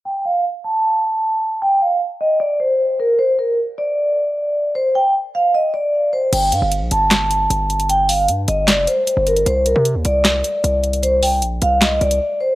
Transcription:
<<
  \new Staff \with { instrumentName = "Vibraphone" } { \time 4/4 \key g \minor \tempo 4 = 153 g''8 f''8 r8 a''2~ a''8 | g''8 f''8 r8 ees''8 d''8 c''4 bes'8 | c''8 bes'8 r8 d''2~ d''8 | c''8 g''8 r8 f''8 ees''8 d''4 c''8 |
g''8 f''8 r8 a''2~ a''8 | g''8 f''8 r8 ees''8 d''8 c''4 bes'8 | c''8 bes'8 r8 d''2~ d''8 | c''8 g''8 r8 f''8 ees''8 d''4 c''8 | }
  \new Staff \with { instrumentName = "808-style bass" } { \clef bass \time 4/4 \key g \minor r1 | r1 | r1 | r1 |
g,,8 g,16 g,,8 bes,,16 g,,4. g,,4~ | g,,4 g,8 g,,8. f,,16 r8. g,,8. | c,8. c8 ees,16 c,4 r8 c,4~ | c,4 bes,,8 c,4 c,8 r4 | }
  \new DrumStaff \with { instrumentName = "Drums" } \drummode { \time 4/4 r4 r4 r4 r4 | r4 r4 r4 r4 | r4 r4 r4 r4 | r4 r4 r4 r4 |
<cymc hh>8 hh8 hh8 hh8 <hc hh sn>8 hh8 hh8 hh16 hh16 | hh8 hho8 hh8 hh8 <hc hh sn>8 hh8 hh8 hh16 hh16 | hh8 hh8 hh8 hh8 <hc hh sn>8 hh8 hh8 hh16 hh16 | hh8 hho8 hh8 hh8 <hc hh sn>8 hh16 hh16 r4 | }
>>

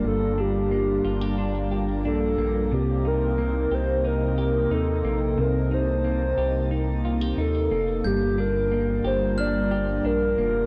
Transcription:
<<
  \new Staff \with { instrumentName = "Glockenspiel" } { \time 4/4 \key g \minor \tempo 4 = 90 r1 | r1 | r1 | g'''2 f'''2 | }
  \new Staff \with { instrumentName = "Soft synth lead" } { \time 4/4 \key g \minor a'8 g'2 r8 a'4 | g'8 bes'4 c''8 bes'4 a'4 | bes'8 c''2 r8 a'4 | g'8 bes'4 c''8 d''4 bes'4 | }
  \new Staff \with { instrumentName = "Clean electric guitar" } { \time 4/4 \key g \minor <g, bes d' g'>8 d'8 bes8 f'16 g'16 d'8 g'8 d'8 bes8 | c8 ees'8 bes8 g'8 ees'8 g'8 ees'8 bes8 | c8 ees'8 bes8 g'8 ees'8 f'16 g'16 ees'8 bes8 | g,8 d'8 bes8 g'8 d'8 g'8 d'8 bes8 | }
  \new Staff \with { instrumentName = "Analog synth pad" } { \time 4/4 \key g \minor << { <g d' f'>1 | <c c' ees'>1~ | <c c' ees'>1 | <g d' f'>1 | } \\ { bes1~ | bes1~ | bes1~ | bes1 | } >> }
  \new Staff \with { instrumentName = "Analog synth bass" } { \clef bass \time 4/4 \key g \minor g,,4. g,,4. bes,,8 bes,,8 | c,4. c,4. ees,8 bes,,8 | c,4. c,4. ees,8 f,,8 | g,,4. g,,4. bes,,8 f,,8 | }
>>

